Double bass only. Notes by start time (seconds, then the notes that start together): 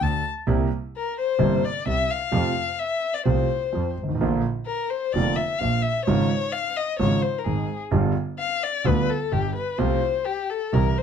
0.01 D2
0.48 C2
1.40 G1
1.86 C2
2.33 F2
3.26 C2
3.74 F2
3.97 G#1
4.21 A#1
5.14 F1
5.61 A#1
6.08 G#1
7.00 G#1
7.46 G#1
7.92 G1
8.86 D2
9.32 G1
9.79 C2
10.73 C2